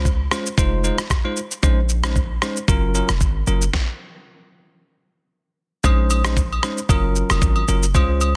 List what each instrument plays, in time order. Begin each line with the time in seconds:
Already playing: 808-style bass C#2
0.05 kick, shaker
0.31 tine electric piano G#3 C#4 F4 C5, cross-stick, shaker
0.46 shaker
0.57 808-style bass F1, tine electric piano G#3 D#4 F4 C5, kick, shaker
0.84 tine electric piano G#3 D#4 F4 C5, shaker
0.98 cross-stick, shaker
1.10 kick, cross-stick, shaker
1.25 tine electric piano G#3 D#4 F4 C5
1.37 shaker
1.51 shaker
1.63 808-style bass A#1, tine electric piano G#3 C#4 D#4 C5, kick, shaker
1.89 shaker
2.04 tine electric piano G#3 C#4 D#4 C5, cross-stick, shaker
2.16 kick, shaker
2.42 tine electric piano G#3 C#4 D#4 C5, cross-stick, shaker
2.57 shaker
2.68 808-style bass F#1, tine electric piano F#3 C#4 F4 A#4, kick, shaker
2.94 tine electric piano F#3 C#4 F4 A#4, shaker
3.09 808-style bass F1, cross-stick, shaker
3.21 808-style bass G#1, kick, shaker
3.47 808-style bass F#1, tine electric piano F#3 C#4 F4 A#4, shaker
3.62 shaker
3.73 kick, snare
5.84 808-style bass A#1, tine electric piano G#3 C#4 D#4 C5, kick, high agogo, shaker
6.10 high agogo, shaker
6.25 tine electric piano G#3 C#4 D#4 C5, cross-stick, shaker
6.37 kick, shaker
6.53 high agogo
6.63 tine electric piano G#3 C#4 D#4 C5, cross-stick, shaker
6.78 shaker
6.89 808-style bass F#1, tine electric piano F#3 C#4 F4 A#4, kick, high agogo, shaker
7.16 shaker
7.30 808-style bass F1, cross-stick, high agogo, shaker
7.42 808-style bass G#1, kick, shaker
7.56 high agogo
7.68 808-style bass F#1, tine electric piano F#3 C#4 F4 A#4, shaker
7.83 shaker
7.94 808-style bass C#2, tine electric piano G#3 C#4 F4 C5, kick, high agogo, shaker
8.21 high agogo, shaker